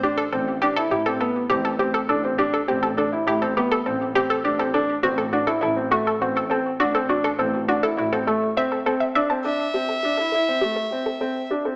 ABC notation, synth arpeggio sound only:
X:1
M:4/4
L:1/16
Q:1/4=102
K:Ador
V:1 name="Synth arpeggio sound"
G A A z G A G A A z G A G A A z | G A G A A z G A G A A z G A G A | A z F A F A A z F A F A A z F A | F A A z F A F A A z e A A e e a |
A z G A G A A z G A G A A z G A |]